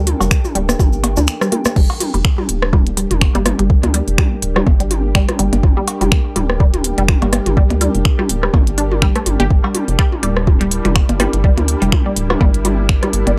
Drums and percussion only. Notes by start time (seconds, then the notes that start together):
0.07 open hi-hat, high tom
0.21 cowbell, cabasa
0.31 finger snap, kick, cabasa
0.45 high tom, cabasa
0.55 open hi-hat
0.69 cross-stick, percussion blips, cabasa
0.79 kick, high tom, cabasa
0.93 cabasa
1.04 open hi-hat, cowbell, percussion blips
1.17 high tom, cabasa
1.27 finger snap, cabasa
1.41 cross-stick, cabasa
1.52 open hi-hat, high tom
1.65 cross-stick, percussion blips, cabasa
1.76 kick, crash
1.90 cowbell
2.00 open hi-hat, high tom
2.14 open hi-hat
2.25 finger snap, kick
2.38 high tom
2.49 open hi-hat
2.62 cross-stick
2.73 kick, high tom
2.87 closed hi-hat
2.97 open hi-hat
3.11 closed hi-hat, high tom
3.21 finger snap, kick, cowbell
3.35 closed hi-hat, percussion blips
3.46 cross-stick, open hi-hat, high tom, percussion blips
3.59 closed hi-hat
3.70 kick
3.83 closed hi-hat, high tom, percussion blips
3.94 open hi-hat
4.08 open hi-hat
4.18 finger snap, kick, high tom
4.42 open hi-hat
4.56 cross-stick, high tom, cowbell
4.67 kick, percussion blips
4.80 closed hi-hat
4.91 open hi-hat, high tom
5.15 finger snap, kick
5.29 cross-stick, closed hi-hat, high tom
5.39 open hi-hat
5.53 closed hi-hat, percussion blips
5.63 kick, high tom
5.88 open hi-hat, cowbell
6.01 open hi-hat, high tom
6.12 finger snap, kick
6.36 open hi-hat, high tom
6.50 cross-stick
6.60 kick
6.74 closed hi-hat, high tom
6.84 open hi-hat
6.98 closed hi-hat
7.08 finger snap, kick, high tom
7.22 closed hi-hat, cowbell, percussion blips
7.33 cross-stick, open hi-hat, percussion blips
7.46 closed hi-hat, high tom
7.57 kick
7.70 closed hi-hat, percussion blips
7.81 open hi-hat, high tom
7.95 open hi-hat
8.05 finger snap, kick
8.19 high tom
8.29 open hi-hat
8.43 cross-stick
8.54 kick, high tom, cowbell, percussion blips
8.67 closed hi-hat
8.78 open hi-hat
8.91 high tom
9.02 finger snap, kick
9.16 cross-stick, closed hi-hat
9.26 open hi-hat, high tom
9.40 closed hi-hat, percussion blips
9.50 kick
9.64 cowbell
9.75 open hi-hat, high tom
9.88 open hi-hat
9.99 finger snap, kick
10.12 high tom
10.23 open hi-hat
10.37 cross-stick
10.47 kick, high tom
10.61 closed hi-hat
10.71 open hi-hat
10.85 closed hi-hat, high tom
10.96 finger snap, kick, cowbell
11.09 closed hi-hat, percussion blips
11.20 cross-stick, open hi-hat, high tom, percussion blips
11.33 closed hi-hat
11.44 kick
11.58 closed hi-hat, high tom, percussion blips
11.68 open hi-hat
11.82 open hi-hat
11.92 finger snap, kick, high tom
12.16 open hi-hat
12.30 cross-stick, high tom, cowbell
12.41 kick, percussion blips
12.54 closed hi-hat
12.65 open hi-hat, high tom
12.89 finger snap, kick
13.03 cross-stick, closed hi-hat, high tom
13.13 open hi-hat
13.27 closed hi-hat, percussion blips